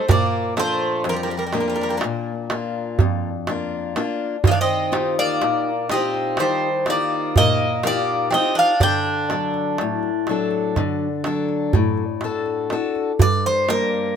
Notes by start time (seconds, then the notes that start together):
Already playing: C5
0.08 A#2 A#3 D5, darbuka dum
0.57 F3 A3 D4 F4 C5, darbuka tek
1.04 F2, darbuka tek
1.09 F3 G3 A#4
1.16 A#4
1.23 G3 A#4
1.30 G3 A#4
1.37 G3 A#4
1.47 G3 A#4
1.53 G3 A#3 D4 F4 A#4, darbuka tek
1.60 G3 A#4
1.68 G3 A#4
1.74 G3 A#4, darbuka tek
1.81 G3 A#4
1.89 G3 A#4
1.97 G3 A#4, darbuka tek
2.04 A#2
2.50 A#3 D4 F4, darbuka tek
2.99 F2, darbuka dum
3.47 A#3 D4 F4, darbuka tek
3.96 A#3 D4 F4, darbuka tek
4.44 D#3 A#3 D#5, darbuka dum
4.51 D4 F5
4.61 C4 D#5
4.92 D#4 F4 G4, darbuka tek
5.19 A#3 D5
5.41 A#2, darbuka tek
5.89 D#4 F4 G4 D#5, darbuka tek
5.94 C4
6.14 darbuka tek
6.37 D#3 G3 C5, darbuka tek
6.86 A#3 D#4 F4 G4, darbuka tek
6.90 D5
7.36 A#2 A#3 D#5, darbuka dum
7.83 A#3 D#4 F4 G4 D5, darbuka tek
8.31 C4 D#4 D#5, darbuka tek
8.35 F4 G4
8.55 D4 F5
8.80 D3 D4 G5, darbuka dum
9.06 darbuka tek
9.30 F#3 D4 A4, darbuka tek
9.54 darbuka tek
9.78 A2, darbuka tek
10.03 darbuka tek
10.27 F#3 D4, darbuka tek
10.31 A4
10.51 darbuka tek
10.76 D3, darbuka tek, darbuka dum
11.24 F#3 D4 A4, darbuka tek
11.49 darbuka tek
11.73 A2, darbuka dum
11.97 darbuka tek
12.21 D4 A4, darbuka tek
12.25 F#4
12.46 darbuka tek
12.70 D4 F#4 A4, darbuka tek
12.95 darbuka tek
13.19 G2 D5, darbuka dum
13.46 C5
13.69 G3 A#3 D4 A#4, darbuka tek